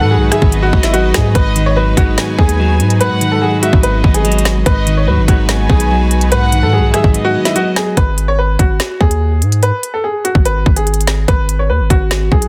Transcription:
Already playing: G#2 D#3 G#3 D#4 F#4 B4 F#5
0.01 G#2 A4
0.11 F#3 G#4
0.16 B1
0.32 G#3 G#4 E5, cross-stick, closed hi-hat
0.42 G#1, kick
0.52 B3 D#5, closed hi-hat
0.63 F#4
0.73 G#1 G#3, kick
0.83 E4, snare, closed hi-hat
0.93 F#3 F#4, closed hi-hat
1.14 G#2 G#4, kick, cross-stick, snare, closed hi-hat
1.35 G#1 G#2 G#3 B4 D#5, kick, closed hi-hat
1.56 D#3, closed hi-hat
1.66 C#5
1.76 F#3 B4
1.97 G#1 G#3 F#4, kick, closed hi-hat
2.18 B3 G#5, snare, closed hi-hat
2.38 D#2 G#3 G#4, kick
2.49 closed hi-hat
2.60 F#3
2.80 G#2, closed hi-hat
2.90 closed hi-hat
3.00 G#2 B4 F#5, closed hi-hat
3.21 D#3, closed hi-hat
3.32 A4
3.42 F#3 G#4
3.62 G#3 F#4 E5, closed hi-hat
3.73 G#1, kick
3.83 B3 B4 D#5, closed hi-hat
4.04 G#1 G#3, kick
4.14 G#4, closed hi-hat
4.25 F#3, closed hi-hat
4.32 closed hi-hat
4.38 closed hi-hat
4.45 snare, closed hi-hat
4.66 G#1 G#2 D#4 F#4 B4 D#5, kick, closed hi-hat
4.87 D#3, closed hi-hat
4.97 C#5
5.07 D#2 F#3 B4
5.18 G#1
5.28 G#1 G#3 F#4, kick, closed hi-hat
5.49 B3 G#5, snare, closed hi-hat
5.70 B1 G#3 G#4, kick
5.80 closed hi-hat
5.91 F#3
6.11 closed hi-hat
6.21 closed hi-hat
6.31 G#2 B4 F#5, closed hi-hat
6.52 D#3, closed hi-hat
6.63 G#2 A4
6.73 F#3 G#4
6.78 B1
6.94 G#3 G#4 E5, cross-stick, closed hi-hat
7.04 G#1, kick
7.14 B3 D#5, closed hi-hat
7.25 F#4
7.35 G#3
7.45 E4, snare, closed hi-hat
7.55 F#3 F#4, closed hi-hat
7.76 G#4, cross-stick, snare, closed hi-hat
7.97 G#1 B4, kick, closed hi-hat
8.18 closed hi-hat
8.28 C#5
8.39 B4
8.59 G#1 F#4, kick, closed hi-hat
8.80 snare, closed hi-hat
9.01 D#2 G#4, kick
9.11 closed hi-hat
9.42 G#2, closed hi-hat
9.52 closed hi-hat
9.63 B4, closed hi-hat
9.83 closed hi-hat
9.94 A4
10.04 G#4
10.25 F#4, closed hi-hat
10.35 G#1, kick
10.45 B4, closed hi-hat
10.66 G#1, kick
10.76 G#4, closed hi-hat
10.87 closed hi-hat
10.94 closed hi-hat
11.01 closed hi-hat
11.07 snare, closed hi-hat
11.28 G#1 B4, kick, closed hi-hat
11.49 closed hi-hat
11.59 C#5
11.70 D#2 B4
11.80 G#1
11.90 G#1 F#4, kick, closed hi-hat
12.11 snare, closed hi-hat
12.32 B1 G#4, kick
12.42 closed hi-hat

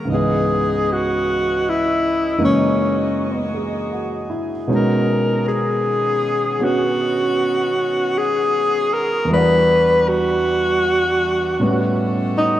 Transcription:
Already playing: D#3 F#3 G#3
0.05 C#2 G#2
0.09 E3 B3 C#4 B4 D#5
0.14 G#4 D#5
0.93 F#4
1.69 E4
2.38 F#2 C#3 E3 G#3 A#3 D#4 F#4 G#4
2.45 C#4
3.55 G#4
3.92 F#4
4.30 E4
4.67 B2 D#3 F#3 G#3 B3 C#4 D#4
4.75 A#4
5.48 G#4
6.59 F#3 B3
6.63 C#4 F#4
6.97 F#4
8.18 G#4
8.94 A#4
9.25 E2 E3
9.29 E3 G3 D4 B4
9.34 D4 F#4
10.08 F#4
11.56 A2 B2 G3 C#4 A4
11.61 G3 B3 C#4 F#4
12.38 D#4

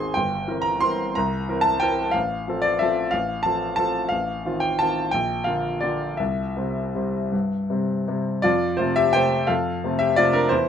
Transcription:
Already playing: G#1 D#3 C4 G#4 G#5 C6
0.14 G1 G5
0.48 E3 C4 A#4
0.62 A#5
0.81 E3 C4 A#4 C6
1.15 C2 A#5
1.49 E3 C4 A#4
1.61 A5
1.80 E3 C4 A#4 G5
2.11 A1 F5
2.48 F3 C4 A4
2.62 D5
2.79 F3 C4 A4 E5
3.11 A1 F5
3.43 F3 C4 A4 A5
3.76 F3 C4 A4 A5
4.09 A1 F5
4.45 D#3 C4 F4
4.60 G5
4.79 D#3 C4 F4 A5
5.11 A#1 G5
5.44 D3 A#3 F4 F5
5.81 D3 A#3 F4 D5
6.17 C2 E5
6.57 C3 G3 C4
6.95 C3 G3 C4
7.32 G2
7.70 C3 G3 C4
8.08 C3 G3 C4
8.42 F2 F4 D5
8.77 C3 A3 C4 F4 C5
8.96 G4 E5
9.13 C3 A3 C4 C5 G5
9.47 F2 A4 F5
9.84 C3 A3 C4
9.99 G4 E5
10.16 C3 A3 C4 F4 D5
10.33 D4 A#4
10.49 E2 E4 C5

